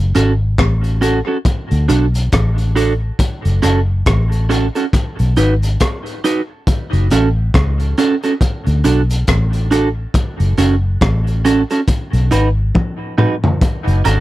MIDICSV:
0, 0, Header, 1, 4, 480
1, 0, Start_track
1, 0, Key_signature, 3, "minor"
1, 0, Tempo, 868307
1, 1764, Time_signature, 4, 2, 24, 8
1, 7850, End_track
2, 0, Start_track
2, 0, Title_t, "Clean electric guitar"
2, 0, Program_c, 0, 27
2, 83, Note_on_c, 0, 61, 72
2, 85, Note_on_c, 0, 66, 84
2, 88, Note_on_c, 0, 69, 87
2, 175, Note_off_c, 0, 61, 0
2, 176, Note_off_c, 0, 66, 0
2, 177, Note_off_c, 0, 69, 0
2, 559, Note_on_c, 0, 61, 70
2, 563, Note_on_c, 0, 66, 86
2, 566, Note_on_c, 0, 69, 81
2, 653, Note_off_c, 0, 61, 0
2, 655, Note_off_c, 0, 66, 0
2, 656, Note_off_c, 0, 69, 0
2, 702, Note_on_c, 0, 69, 60
2, 704, Note_on_c, 0, 66, 54
2, 707, Note_on_c, 0, 61, 46
2, 753, Note_off_c, 0, 69, 0
2, 754, Note_off_c, 0, 66, 0
2, 756, Note_off_c, 0, 61, 0
2, 1041, Note_on_c, 0, 62, 78
2, 1044, Note_on_c, 0, 66, 74
2, 1048, Note_on_c, 0, 69, 75
2, 1134, Note_off_c, 0, 62, 0
2, 1136, Note_off_c, 0, 66, 0
2, 1137, Note_off_c, 0, 69, 0
2, 1523, Note_on_c, 0, 62, 81
2, 1525, Note_on_c, 0, 66, 91
2, 1528, Note_on_c, 0, 69, 98
2, 1615, Note_off_c, 0, 62, 0
2, 1616, Note_off_c, 0, 66, 0
2, 1618, Note_off_c, 0, 69, 0
2, 2003, Note_on_c, 0, 61, 76
2, 2006, Note_on_c, 0, 66, 78
2, 2008, Note_on_c, 0, 69, 85
2, 2095, Note_off_c, 0, 61, 0
2, 2096, Note_off_c, 0, 66, 0
2, 2097, Note_off_c, 0, 69, 0
2, 2484, Note_on_c, 0, 61, 70
2, 2485, Note_on_c, 0, 66, 73
2, 2488, Note_on_c, 0, 69, 89
2, 2575, Note_off_c, 0, 61, 0
2, 2576, Note_off_c, 0, 66, 0
2, 2578, Note_off_c, 0, 69, 0
2, 2628, Note_on_c, 0, 69, 65
2, 2632, Note_on_c, 0, 66, 57
2, 2634, Note_on_c, 0, 61, 55
2, 2677, Note_off_c, 0, 69, 0
2, 2679, Note_off_c, 0, 66, 0
2, 2680, Note_off_c, 0, 61, 0
2, 2968, Note_on_c, 0, 63, 81
2, 2971, Note_on_c, 0, 66, 83
2, 2974, Note_on_c, 0, 71, 89
2, 3057, Note_off_c, 0, 63, 0
2, 3059, Note_off_c, 0, 66, 0
2, 3060, Note_off_c, 0, 71, 0
2, 3450, Note_on_c, 0, 63, 84
2, 3454, Note_on_c, 0, 66, 93
2, 3456, Note_on_c, 0, 71, 96
2, 3539, Note_off_c, 0, 63, 0
2, 3541, Note_off_c, 0, 66, 0
2, 3542, Note_off_c, 0, 71, 0
2, 3933, Note_on_c, 0, 61, 67
2, 3935, Note_on_c, 0, 66, 74
2, 3939, Note_on_c, 0, 69, 75
2, 4020, Note_off_c, 0, 61, 0
2, 4022, Note_off_c, 0, 66, 0
2, 4023, Note_off_c, 0, 69, 0
2, 4411, Note_on_c, 0, 61, 88
2, 4413, Note_on_c, 0, 66, 87
2, 4417, Note_on_c, 0, 69, 102
2, 4499, Note_off_c, 0, 61, 0
2, 4500, Note_off_c, 0, 66, 0
2, 4502, Note_off_c, 0, 69, 0
2, 4553, Note_on_c, 0, 69, 62
2, 4556, Note_on_c, 0, 66, 56
2, 4558, Note_on_c, 0, 61, 46
2, 4600, Note_off_c, 0, 69, 0
2, 4601, Note_off_c, 0, 66, 0
2, 4602, Note_off_c, 0, 61, 0
2, 4888, Note_on_c, 0, 62, 69
2, 4893, Note_on_c, 0, 66, 79
2, 4894, Note_on_c, 0, 69, 75
2, 4978, Note_off_c, 0, 62, 0
2, 4981, Note_off_c, 0, 66, 0
2, 4981, Note_off_c, 0, 69, 0
2, 5367, Note_on_c, 0, 62, 69
2, 5371, Note_on_c, 0, 66, 89
2, 5372, Note_on_c, 0, 69, 78
2, 5458, Note_off_c, 0, 62, 0
2, 5460, Note_off_c, 0, 66, 0
2, 5460, Note_off_c, 0, 69, 0
2, 5848, Note_on_c, 0, 61, 73
2, 5851, Note_on_c, 0, 66, 79
2, 5853, Note_on_c, 0, 69, 81
2, 5938, Note_off_c, 0, 61, 0
2, 5940, Note_off_c, 0, 66, 0
2, 5941, Note_off_c, 0, 69, 0
2, 6328, Note_on_c, 0, 61, 78
2, 6329, Note_on_c, 0, 66, 75
2, 6333, Note_on_c, 0, 69, 87
2, 6418, Note_off_c, 0, 61, 0
2, 6419, Note_off_c, 0, 66, 0
2, 6421, Note_off_c, 0, 69, 0
2, 6471, Note_on_c, 0, 69, 66
2, 6474, Note_on_c, 0, 66, 57
2, 6477, Note_on_c, 0, 61, 53
2, 6519, Note_off_c, 0, 69, 0
2, 6520, Note_off_c, 0, 66, 0
2, 6522, Note_off_c, 0, 61, 0
2, 6805, Note_on_c, 0, 63, 76
2, 6808, Note_on_c, 0, 66, 75
2, 6811, Note_on_c, 0, 71, 75
2, 6897, Note_off_c, 0, 63, 0
2, 6899, Note_off_c, 0, 66, 0
2, 6900, Note_off_c, 0, 71, 0
2, 7284, Note_on_c, 0, 63, 72
2, 7287, Note_on_c, 0, 66, 83
2, 7290, Note_on_c, 0, 71, 81
2, 7377, Note_off_c, 0, 63, 0
2, 7378, Note_off_c, 0, 66, 0
2, 7380, Note_off_c, 0, 71, 0
2, 7764, Note_on_c, 0, 61, 71
2, 7769, Note_on_c, 0, 66, 84
2, 7770, Note_on_c, 0, 69, 84
2, 7850, Note_off_c, 0, 61, 0
2, 7850, Note_off_c, 0, 66, 0
2, 7850, Note_off_c, 0, 69, 0
2, 7850, End_track
3, 0, Start_track
3, 0, Title_t, "Fingered electric bass"
3, 0, Program_c, 1, 33
3, 0, Note_on_c, 1, 30, 80
3, 73, Note_off_c, 1, 30, 0
3, 87, Note_on_c, 1, 32, 83
3, 300, Note_off_c, 1, 32, 0
3, 324, Note_on_c, 1, 33, 84
3, 664, Note_off_c, 1, 33, 0
3, 949, Note_on_c, 1, 38, 81
3, 1035, Note_off_c, 1, 38, 0
3, 1048, Note_on_c, 1, 35, 80
3, 1260, Note_off_c, 1, 35, 0
3, 1288, Note_on_c, 1, 33, 91
3, 1715, Note_off_c, 1, 33, 0
3, 1910, Note_on_c, 1, 30, 82
3, 1996, Note_off_c, 1, 30, 0
3, 2011, Note_on_c, 1, 30, 73
3, 2222, Note_off_c, 1, 30, 0
3, 2248, Note_on_c, 1, 33, 90
3, 2587, Note_off_c, 1, 33, 0
3, 2873, Note_on_c, 1, 35, 73
3, 2958, Note_off_c, 1, 35, 0
3, 2972, Note_on_c, 1, 32, 83
3, 3183, Note_off_c, 1, 32, 0
3, 3833, Note_on_c, 1, 30, 90
3, 3918, Note_off_c, 1, 30, 0
3, 3932, Note_on_c, 1, 33, 82
3, 4143, Note_off_c, 1, 33, 0
3, 4169, Note_on_c, 1, 37, 81
3, 4382, Note_off_c, 1, 37, 0
3, 4793, Note_on_c, 1, 38, 90
3, 4878, Note_off_c, 1, 38, 0
3, 4893, Note_on_c, 1, 35, 87
3, 5104, Note_off_c, 1, 35, 0
3, 5132, Note_on_c, 1, 33, 87
3, 5558, Note_off_c, 1, 33, 0
3, 5750, Note_on_c, 1, 30, 95
3, 5837, Note_off_c, 1, 30, 0
3, 5847, Note_on_c, 1, 30, 81
3, 6061, Note_off_c, 1, 30, 0
3, 6090, Note_on_c, 1, 33, 80
3, 6429, Note_off_c, 1, 33, 0
3, 6707, Note_on_c, 1, 35, 91
3, 6795, Note_off_c, 1, 35, 0
3, 6809, Note_on_c, 1, 32, 82
3, 7022, Note_off_c, 1, 32, 0
3, 7669, Note_on_c, 1, 30, 87
3, 7757, Note_off_c, 1, 30, 0
3, 7771, Note_on_c, 1, 32, 87
3, 7850, Note_off_c, 1, 32, 0
3, 7850, End_track
4, 0, Start_track
4, 0, Title_t, "Drums"
4, 81, Note_on_c, 9, 42, 78
4, 137, Note_off_c, 9, 42, 0
4, 321, Note_on_c, 9, 42, 66
4, 323, Note_on_c, 9, 36, 99
4, 327, Note_on_c, 9, 37, 101
4, 376, Note_off_c, 9, 42, 0
4, 378, Note_off_c, 9, 36, 0
4, 383, Note_off_c, 9, 37, 0
4, 463, Note_on_c, 9, 42, 47
4, 518, Note_off_c, 9, 42, 0
4, 563, Note_on_c, 9, 42, 66
4, 618, Note_off_c, 9, 42, 0
4, 802, Note_on_c, 9, 36, 94
4, 802, Note_on_c, 9, 42, 85
4, 857, Note_off_c, 9, 36, 0
4, 858, Note_off_c, 9, 42, 0
4, 945, Note_on_c, 9, 42, 50
4, 1001, Note_off_c, 9, 42, 0
4, 1043, Note_on_c, 9, 42, 59
4, 1098, Note_off_c, 9, 42, 0
4, 1184, Note_on_c, 9, 42, 34
4, 1239, Note_off_c, 9, 42, 0
4, 1284, Note_on_c, 9, 42, 82
4, 1286, Note_on_c, 9, 36, 96
4, 1292, Note_on_c, 9, 37, 106
4, 1339, Note_off_c, 9, 42, 0
4, 1342, Note_off_c, 9, 36, 0
4, 1347, Note_off_c, 9, 37, 0
4, 1426, Note_on_c, 9, 42, 53
4, 1481, Note_off_c, 9, 42, 0
4, 1526, Note_on_c, 9, 42, 64
4, 1581, Note_off_c, 9, 42, 0
4, 1763, Note_on_c, 9, 36, 92
4, 1763, Note_on_c, 9, 42, 90
4, 1819, Note_off_c, 9, 36, 0
4, 1819, Note_off_c, 9, 42, 0
4, 1908, Note_on_c, 9, 42, 49
4, 1963, Note_off_c, 9, 42, 0
4, 2003, Note_on_c, 9, 42, 78
4, 2059, Note_off_c, 9, 42, 0
4, 2244, Note_on_c, 9, 42, 70
4, 2246, Note_on_c, 9, 36, 98
4, 2250, Note_on_c, 9, 37, 101
4, 2299, Note_off_c, 9, 42, 0
4, 2301, Note_off_c, 9, 36, 0
4, 2306, Note_off_c, 9, 37, 0
4, 2388, Note_on_c, 9, 42, 52
4, 2443, Note_off_c, 9, 42, 0
4, 2487, Note_on_c, 9, 42, 70
4, 2543, Note_off_c, 9, 42, 0
4, 2626, Note_on_c, 9, 42, 35
4, 2681, Note_off_c, 9, 42, 0
4, 2726, Note_on_c, 9, 36, 95
4, 2728, Note_on_c, 9, 42, 85
4, 2782, Note_off_c, 9, 36, 0
4, 2783, Note_off_c, 9, 42, 0
4, 2868, Note_on_c, 9, 42, 50
4, 2924, Note_off_c, 9, 42, 0
4, 2964, Note_on_c, 9, 42, 60
4, 3020, Note_off_c, 9, 42, 0
4, 3109, Note_on_c, 9, 42, 32
4, 3164, Note_off_c, 9, 42, 0
4, 3206, Note_on_c, 9, 42, 87
4, 3210, Note_on_c, 9, 36, 90
4, 3215, Note_on_c, 9, 37, 94
4, 3262, Note_off_c, 9, 42, 0
4, 3265, Note_off_c, 9, 36, 0
4, 3270, Note_off_c, 9, 37, 0
4, 3350, Note_on_c, 9, 42, 48
4, 3405, Note_off_c, 9, 42, 0
4, 3450, Note_on_c, 9, 42, 61
4, 3505, Note_off_c, 9, 42, 0
4, 3688, Note_on_c, 9, 36, 96
4, 3688, Note_on_c, 9, 42, 86
4, 3743, Note_off_c, 9, 36, 0
4, 3744, Note_off_c, 9, 42, 0
4, 3831, Note_on_c, 9, 42, 42
4, 3886, Note_off_c, 9, 42, 0
4, 3927, Note_on_c, 9, 42, 76
4, 3983, Note_off_c, 9, 42, 0
4, 4169, Note_on_c, 9, 36, 106
4, 4169, Note_on_c, 9, 42, 70
4, 4175, Note_on_c, 9, 37, 102
4, 4224, Note_off_c, 9, 36, 0
4, 4224, Note_off_c, 9, 42, 0
4, 4230, Note_off_c, 9, 37, 0
4, 4310, Note_on_c, 9, 42, 50
4, 4365, Note_off_c, 9, 42, 0
4, 4409, Note_on_c, 9, 42, 71
4, 4464, Note_off_c, 9, 42, 0
4, 4548, Note_on_c, 9, 42, 33
4, 4603, Note_off_c, 9, 42, 0
4, 4648, Note_on_c, 9, 36, 90
4, 4650, Note_on_c, 9, 42, 88
4, 4703, Note_off_c, 9, 36, 0
4, 4705, Note_off_c, 9, 42, 0
4, 4790, Note_on_c, 9, 42, 47
4, 4845, Note_off_c, 9, 42, 0
4, 4886, Note_on_c, 9, 42, 63
4, 4941, Note_off_c, 9, 42, 0
4, 5029, Note_on_c, 9, 42, 37
4, 5084, Note_off_c, 9, 42, 0
4, 5126, Note_on_c, 9, 42, 77
4, 5130, Note_on_c, 9, 36, 92
4, 5135, Note_on_c, 9, 37, 97
4, 5181, Note_off_c, 9, 42, 0
4, 5185, Note_off_c, 9, 36, 0
4, 5190, Note_off_c, 9, 37, 0
4, 5269, Note_on_c, 9, 42, 53
4, 5324, Note_off_c, 9, 42, 0
4, 5368, Note_on_c, 9, 42, 64
4, 5423, Note_off_c, 9, 42, 0
4, 5606, Note_on_c, 9, 36, 97
4, 5607, Note_on_c, 9, 42, 87
4, 5661, Note_off_c, 9, 36, 0
4, 5662, Note_off_c, 9, 42, 0
4, 5748, Note_on_c, 9, 42, 47
4, 5804, Note_off_c, 9, 42, 0
4, 5845, Note_on_c, 9, 42, 74
4, 5901, Note_off_c, 9, 42, 0
4, 6087, Note_on_c, 9, 42, 66
4, 6088, Note_on_c, 9, 36, 101
4, 6093, Note_on_c, 9, 37, 107
4, 6142, Note_off_c, 9, 42, 0
4, 6143, Note_off_c, 9, 36, 0
4, 6148, Note_off_c, 9, 37, 0
4, 6231, Note_on_c, 9, 42, 47
4, 6286, Note_off_c, 9, 42, 0
4, 6329, Note_on_c, 9, 42, 67
4, 6384, Note_off_c, 9, 42, 0
4, 6467, Note_on_c, 9, 42, 33
4, 6522, Note_off_c, 9, 42, 0
4, 6565, Note_on_c, 9, 42, 88
4, 6566, Note_on_c, 9, 36, 90
4, 6620, Note_off_c, 9, 42, 0
4, 6621, Note_off_c, 9, 36, 0
4, 6707, Note_on_c, 9, 42, 51
4, 6763, Note_off_c, 9, 42, 0
4, 6804, Note_on_c, 9, 42, 62
4, 6860, Note_off_c, 9, 42, 0
4, 7046, Note_on_c, 9, 48, 46
4, 7050, Note_on_c, 9, 36, 90
4, 7102, Note_off_c, 9, 48, 0
4, 7105, Note_off_c, 9, 36, 0
4, 7287, Note_on_c, 9, 45, 74
4, 7343, Note_off_c, 9, 45, 0
4, 7428, Note_on_c, 9, 43, 82
4, 7483, Note_off_c, 9, 43, 0
4, 7526, Note_on_c, 9, 36, 108
4, 7527, Note_on_c, 9, 42, 90
4, 7581, Note_off_c, 9, 36, 0
4, 7582, Note_off_c, 9, 42, 0
4, 7671, Note_on_c, 9, 42, 49
4, 7726, Note_off_c, 9, 42, 0
4, 7766, Note_on_c, 9, 42, 74
4, 7767, Note_on_c, 9, 54, 55
4, 7767, Note_on_c, 9, 76, 78
4, 7821, Note_off_c, 9, 42, 0
4, 7822, Note_off_c, 9, 54, 0
4, 7822, Note_off_c, 9, 76, 0
4, 7850, End_track
0, 0, End_of_file